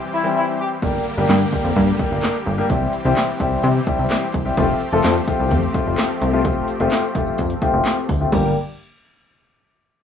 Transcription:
Already playing: E3 G3 C4 G4
0.12 E4
0.23 E3 G3 C4 E4 G4
0.36 E4
0.59 G4
0.82 G1 D3 G3 A#3 D4 G4, kick, downlifter
1.17 G1 G3 A#3 D4 G4
1.29 G2, snare, clap
1.52 G3 A#3 D4 G4, kick
1.64 F2
1.76 G2, kick
1.99 G3 A#3 D4 G4, kick
2.11 G1
2.23 snare, clap
2.46 G1
2.58 G3 A#3 D4 G4
2.70 C2 E3 G3 C4 E4 G4, kick, closed hi-hat
2.93 closed hi-hat
3.05 C2 G3 C4 E4 G4
3.17 snare, clap, closed hi-hat
3.40 C2 G3 C4 E4 G4, kick, closed hi-hat
3.63 C3, closed hi-hat
3.87 G3 C4 E4 G4, kick, closed hi-hat
3.99 C2
4.10 snare, clap, closed hi-hat
4.34 C2, kick, closed hi-hat
4.45 G3 C4 E4 G4
4.57 F1 F3 A3 C4 F4 G4, kick, closed hi-hat, tambourine
4.80 closed hi-hat, tambourine
4.92 F1 A3 C4 F4 A4
5.04 F2, snare, clap, closed hi-hat, tambourine
5.27 A3 C4 F4 G4, kick, closed hi-hat, tambourine
5.40 C2
5.51 F2, kick, closed hi-hat, tambourine
5.63 tambourine
5.74 A3 C4 F4 G4, kick, closed hi-hat, tambourine
5.87 F1
5.98 snare, clap, closed hi-hat, tambourine
6.21 C2, closed hi-hat, tambourine
6.33 A3 C4 F4 G4
6.45 F1 A3 C4 F4, kick, closed hi-hat, tambourine
6.68 closed hi-hat, tambourine
6.80 F1 A3 C4 F4 G4, closed hi-hat
6.92 snare, clap, closed hi-hat, tambourine
7.15 F1 A3 C4 F4 G4, kick, closed hi-hat, tambourine
7.27 tambourine
7.38 F2, kick, closed hi-hat, tambourine
7.50 closed hi-hat
7.62 A3 C4 F4 G4, kick, closed hi-hat, tambourine
7.74 F1
7.85 snare, clap, closed hi-hat, tambourine
8.09 D2, kick, open hi-hat, tambourine
8.20 A3 C4 F4 G4
8.32 G1 D3 G3 A#3 D4 G4, kick, crash, tambourine

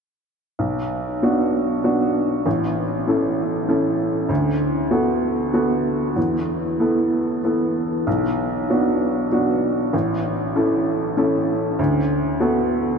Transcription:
0.59 B1
1.22 B3 D4 F#4
1.83 B3 D4 F#4
2.46 A1
3.07 C#4 E4 A4
3.69 C#4 E4 A4
4.29 D2
4.91 B3 F#4 A4
5.53 B3 F#4 A4
6.16 E2
6.79 B3 E4 A4
7.44 B3 E4 A4
8.07 B1
8.70 B3 D4 F#4
9.32 B3 D4 F#4
9.93 A1
10.56 C#4 E4 A4
11.17 C#4 E4 A4
11.79 D2
12.40 B3 F#4 A4

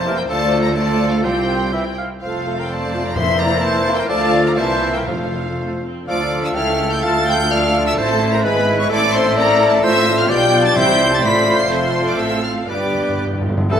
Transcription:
Already playing: F1 F2 A#3 E4 C5 A5
0.06 E3 G4 A#4
0.17 A#4 G5
0.28 D2 F3 A3 F4 A4 D5 A5
0.63 D5 A#5
0.74 F3 A3 F4 A4 D5 A5
1.11 A4 F5
1.22 C2 F3 C4 F4 G4 C5 G5
1.73 E3 C4 E4 G4 E5
1.98 F5
2.21 F1 F2 F3 A3 F4 A4 C5 F5
2.46 A3 F4
2.57 A#4 G5
2.68 A3 F4 C5 D5 A5
2.93 A3 F4
3.04 D5 A#5
3.14 F2 E3 A#3 E4 A#4 C5 E5 C6
3.38 A#3 E4 D5 A#5
3.62 C5 A5
3.87 A#3 E4
3.97 A#4 G5
4.07 D2 F3 A3 F4 A4 D5 F5 A5
4.44 D5 A#5
4.56 C2 E3 A#3 E4 A#4 C5 E5 A5
4.95 A#4 G5
5.06 F1 F2 F3 A3 F4 A4 C5 F5
5.58 A3
5.84 C4
6.07 D2 F3 A3 F4 A4 D5 F5 D6
6.21 A3 D4
6.32 F3 F4
6.44 A3 D4 E5 E6
6.55 C#2 A3 C#4 E4 E5 F5 G5 F6
6.68 A3 C#4
6.79 C#4 E4
6.90 A3 C#4 G5 G6
7.02 D2 F3 F4 F5 A5 A6
7.15 A3 D4
7.26 F3 F4 G5 G6
7.39 A3 D4
7.51 F3 F4 D5 F5 F6
7.63 A3 D4
7.75 F3 F4
7.86 A3 D4 E5 E6
7.97 A1 A2 A3 E4 A4 C5 E5 A5
8.09 C4 A4
8.21 A3 E4
8.32 C4 A4 A#4 A#5
8.43 G#1 G#2 G#3 E4 B4 B5
8.57 B3 G#4
8.68 G#3 E4
8.79 B3 G#4 C#5 C#6
8.90 A1 A2 A3 C4 E4 A4 D5 D6
9.03 A3 C4
9.14 C4 E4 C5 C6
9.27 A3 C4
9.36 C4 E4 A#4 D5 A#5
9.50 A3 C4
9.61 C4 E4
9.71 A3 C4 A4 A5
9.81 A1 A2 A3 F4 C5 E5 F5 E6
9.94 C4 A4
10.05 A3 F4
10.17 C4 A4 F5 F6
10.28 B1 B2 G3 B3 F4 D5 G5 G6
10.39 D4 G4
10.52 B3 F4
10.63 D4 G4 A5 A6
10.75 C2 C3 G3 E4 C5 E5 G5 G6
10.87 C4 G4
10.98 G3 E4
11.10 C4 G4 A5 A6
11.21 A1 A2 A3 F4 D5 F5 B5 B6
11.33 C4 A4
11.45 A3 F4
11.57 C4 A4 C6 C7
11.68 F1 F2 C4 A4 C5 C6
12.05 D5 D6
12.17 A1 A2 A4 E5 E6
12.43 F5 F6
12.68 G1 G2 G3 B3 D4 G4 B4 D5 D6
12.78 G2
12.85 G2
12.94 G2
13.02 G2
13.09 G2
13.18 G2
13.26 G2
13.33 G2
13.41 G2
13.49 G2
13.57 G2
13.70 C2 C3 E3 G3 E4 A4 E5 A5

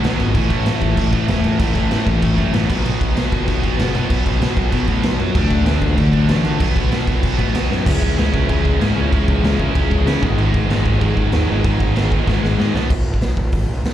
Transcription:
Already playing: B2 D#3 F#3 B3 D#4
0.03 B1 B2 F#3 B3, snare, crash
0.19 G#1 B2 F#3 B3, crash
0.34 A1 A2 E3 A3 C#4 E4, kick, crash
0.50 A2 E3 A3, kick, crash
0.65 A1 A2 E3 A3, snare, crash
0.81 A2 E3 A3, kick, crash
0.97 A1 A2 E3 A3, kick, crash
1.12 A2 E3 A3, kick, crash
1.28 E1 A2 E3 A3, snare, crash
1.43 A2 E3 A3, crash
1.59 A1 A2 E3 A3 C#4, kick, crash
1.63 E4
1.74 A1 A2 E3 A3, kick, crash
1.90 A2 E3 A3, snare, crash
2.06 A1 A2 E3 A3, kick, crash
2.22 A1 A2 E3 A3, kick, crash
2.38 F#2 A2 E3 A3, kick, crash
2.53 A1 A2 E3 A3, snare, crash
2.69 B1 B2 F#3 B3 D#4, kick, crash
2.84 B1 B2 F#3 B3, crash
3.00 B2 F#3 B3, kick, crash
3.15 B1 B2 F#3 B3, snare, crash
3.32 B2 F#3 B3, kick, crash
3.47 B1 B2 F#3 B3, kick, crash
3.62 B2 F#3 B3, kick, crash
3.77 F#1 B2 F#3 B3, snare, crash
3.93 B2 F#3 B3, crash
3.97 D#4
4.09 B1 B2 F#3 B3, kick, crash
4.24 B1 B2 F#3 B3, kick, crash
4.40 B2 F#3 B3, snare, crash
4.56 B1 B2 F#3 B3, kick, crash
4.72 B1 B2 F#3 B3, kick, crash
4.87 A2 B2 F#3 B3, kick, crash
5.03 B1 B2 F#3 B3, snare, crash
5.19 F#2 B2 F#3 B3, crash
5.35 D2 D3 F#3 A3 D4, kick, crash
5.50 D3 A3 D4, kick, crash
5.65 D2 D3 A3 D4, snare, crash
5.82 D3 A3 D4, kick, crash
5.96 D2 D3 A3 D4, kick, crash
6.13 D3 A3 D4, kick, crash
6.28 A1 D3 A3 D4, snare, crash
6.44 D3 A3 D4, crash
6.59 B1 B2 F#3 B3 D#4, kick, crash
6.75 B1 B2 F#3 B3, kick, crash
6.91 B2 F#3 B3, snare, crash
7.07 B1 B2 F#3 B3, kick, crash
7.22 B1 B2 F#3 B3, kick, crash
7.37 A2 B2 F#3 B3, kick, crash
7.53 B1 B2 F#3 B3, snare, crash
7.69 F#2 B2 F#3 B3, snare
7.85 C#2 C#3 G#3 C#4 E4, kick, crash
8.02 C#2, kick
8.17 C#2 C#3 G#3 C#4 E4, snare, crash
8.32 C#2 C#3 G#3 C#4 E4, kick
8.49 C#2 C#3 G#3 C#4 E4, kick, crash
8.65 C#2, kick
8.80 G#2 C#3 G#3 C#4 E4, snare, crash
8.97 C#2 C#3 G#3 C#4 E4
9.11 C#2 C#3 G#3 C#4 E4, kick, crash
9.28 C#2, kick
9.43 C#2 C#3 G#3 C#4 E4, snare, crash
9.58 C#3 G#3 C#4 E4, kick
9.75 C#2 C#3 G#3 C#4 E4, kick, crash
9.91 C#2, kick
10.05 C#3 G#3 C#4 E4, snare, crash
10.21 G#1 G#2 D#3 G#3 B3 D#4, kick
10.38 G#1 G#2 D#3 G#3 B3 D#4, crash
10.54 G#1, kick
10.68 G#1 G#2 D#3 G#3 B3 D#4, snare, crash
10.72 G#2
10.85 G#1 G#2 D#3 G#3 B3 D#4, kick
11.01 G#1 G#2 D#3 G#3 B3 D#4, kick, crash
11.15 G#1 G#2 D#3 G#3, kick
11.32 D#2 G#2 D#3 G#3 B3 D#4, snare, crash
11.47 G#1 G#2 D#3 G#3 B3 D#4
11.64 G#1 G#2 D#3 G#3 B3 D#4, kick, crash
11.80 G#1, kick
11.95 G#1 G#2 D#3 G#3 B3 D#4, snare, crash
12.11 G#2 D#3 G#3 B3 D#4, kick
12.27 G#1 G#2 D#3 G#3 B3 D#4, kick, snare
12.42 G#1 G#2 D#3 G#3, snare
12.58 G#2 D#3 G#3 B3 D#4, snare
12.74 B1 B2 D#3 F#3 B3 D#4, snare
12.90 B1, kick, crash
13.05 B1
13.14 kick
13.21 B1, snare, open hi-hat
13.37 B1, kick
13.52 G#1, kick, open hi-hat
13.68 B1
13.84 B1, snare, open hi-hat

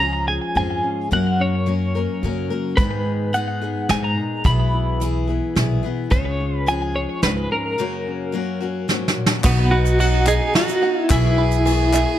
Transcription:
Already playing: C#2 C#4 F4
0.00 F3 G#3 C#4 F4 G#4 A#5
0.28 G#4 G#5
0.55 F2 G#2 G#3 C#4 F4 G#4 G#5
0.84 C#4
1.11 F#2 C#3 F#3 A#3 C#4 A#4 F#5
1.40 C#4 C#5
1.66 F#3 A#3 C#4 A#4
1.95 F#3 A#3 C#4 A#4
2.22 F#2 C#3 F#3 A#3 C#4 A#4
2.50 F#3 A#3 C#4 A#4
2.77 G#2 D#3 G#3 B3 D#4 G#4 B4, kick, closed hi-hat
3.05 D#4
3.33 G#3 B3 D#4 G#4 F#5, closed hi-hat
3.61 G#3 B3 D#4 G#4
3.89 G#2 G#3 B3 D#4 G#4 G#5, snare, closed hi-hat
4.04 A#5
4.17 A#2
4.44 B1 B2 E3 B3 E4 G#4 B5, kick, closed hi-hat
4.74 E4
5.00 E3 B3 E4 G#4, closed hi-hat
5.27 B3 E4 G#4
5.56 B1 A#2 E3 B3 E4 G#4, snare, closed hi-hat
5.83 B2 B3 E4 G#4
6.10 C#2 C#3 G#3 C#4 F4 G#4 C#5, kick, closed hi-hat
6.41 F4
6.57 B4
6.66 F3 G#3 C#4 F4 G#4 G#5, closed hi-hat
6.96 G#4 C#5
7.22 C#2 G#2 G#3 C#4 F4 G#4 B4, snare, closed hi-hat
7.52 C#4 A#4
7.78 F#2 C#3 F#3 A#3 C#4 F#4
8.07 C#4
8.32 F#3 A#3 C#4 F#4
8.60 F#3 A#3 C#4 F#4
8.88 G#2 F#3 A#3 C#4 F#4, snare
9.08 snare
9.17 A#2
9.26 snare
9.43 B1 B2 F#3 B3 D#4 F#4, kick, clap, crash, shaker
9.58 clap
9.71 F#4 B4
9.86 shaker
9.99 F#3 B3 D#4 F#4, ride
10.27 G#4 D#5, clap, shaker
10.54 F#3 B3 D#4 F#4, snare, ride
10.68 shaker
10.82 B3 D#4 F#4 F#5
11.00 E4
11.10 B1 B2 E3 B3 E4 G#4, kick, clap, ride, shaker
11.24 clap
11.38 B4
11.51 shaker
11.65 E3 B3 E4 G#4, ride
11.93 B3 E4 G#4 E5, clap, shaker

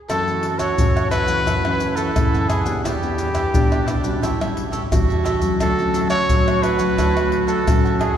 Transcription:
0.09 F#2 E3 A3 C#4 E4 F#4 A4 C#5 F#5, pandeiro, tamborim, maracas, surdo
0.28 E3 A3 C#4, pandeiro, maracas
0.42 E4 A4 C#5 F#5, pandeiro
0.59 E4 A4 C#5 F#5, pandeiro, tamborim, maracas, surdo
0.78 F#2 C#3 E3 A3 C#4, pandeiro, maracas, surdo
0.96 A4 C#5 F#5, pandeiro, tamborim, maracas
1.11 E4 A4 B4 C#5 F#5, pandeiro, tamborim, maracas, surdo
1.27 E3 A3 C#4 A4 C#5 F#5, pandeiro, maracas, surdo
1.46 F#2 E4 A4 C#5 F#5, pandeiro, tamborim, maracas, surdo
1.64 E3 A3 C#4 A4 C#5 F#5, pandeiro, tamborim, maracas
1.80 pandeiro, maracas
1.96 E4 A4 C#5 F#5, pandeiro, maracas
2.16 F#2 C#3 E3 A3 C#4, pandeiro, tamborim, maracas, surdo
2.33 F#2 A4 C#5 F#5, pandeiro, maracas
2.49 E4 G#4 A4 C#5 F#5, pandeiro, tamborim, maracas
2.65 B3 D4 G4 A4 C#5 F#5, pandeiro, maracas, surdo
2.84 E2 E3 E4 G4 B4 D5, pandeiro, tamborim, maracas, surdo
3.03 B3 D4 G4, pandeiro, maracas
3.18 E4 G4 B4 D5, pandeiro, maracas
3.34 E4 G4 B4 D5, pandeiro, tamborim, maracas, surdo
3.54 B1 B2 B3 D4 G4, pandeiro, maracas, surdo
3.71 G4 B4 D5, pandeiro, tamborim, maracas
3.86 D4 E4 G4 B4 D5, pandeiro, tamborim, maracas, surdo
4.02 G3 C#4 F#4 G4 B4 D5, pandeiro, maracas, surdo
4.22 A1 A2 E4 G4 A4 C#5 E5, pandeiro, tamborim, maracas, surdo
4.40 G3 C#4 A4 C#5 E5, pandeiro, tamborim, maracas
4.57 pandeiro
4.72 G4 A4 C#5 E5, pandeiro, maracas
4.92 A1 E3 G3 C#4 F#4, pandeiro, tamborim, maracas, surdo
5.08 E2 A4 C#5 E5, pandeiro, maracas
5.24 G4 A4 C#5 E5, pandeiro, tamborim, maracas
5.40 F#3 A3 C#4 A4 C#5 E5, pandeiro, maracas, surdo
5.60 D2 D3 D4 F#4 A4 C#5 F#5, pandeiro, tamborim, maracas, surdo
5.79 F#3 A3 C#4, pandeiro, maracas
5.93 D4 A4 C#5 F#5, pandeiro, maracas
6.10 D4 A4 C#5 F#5, pandeiro, tamborim, maracas, surdo
6.29 D2 A2 F#3 A3 C#4, pandeiro, maracas, surdo
6.47 A4 C#5 F#5, pandeiro, tamborim, maracas
6.62 D4 A4 B4 C#5 F#5, pandeiro, tamborim, maracas, surdo
6.78 F#3 A3 C#4 A4 C#5 F#5, pandeiro, maracas, surdo
6.97 D2 D3 D4 A4 C#5 F#5, pandeiro, tamborim, maracas, surdo
7.15 F#3 A3 A4 C#5 F#5, pandeiro, tamborim, maracas
7.32 pandeiro
7.47 D4 A4 C#5 F#5, pandeiro, maracas
7.67 D2 A2 F#3 A3 C#4, pandeiro, tamborim, maracas, surdo
7.84 F2 A4 C#5 F#5, pandeiro, maracas
7.99 D4 G#4 A4 C#5 F#5, pandeiro, tamborim, surdo

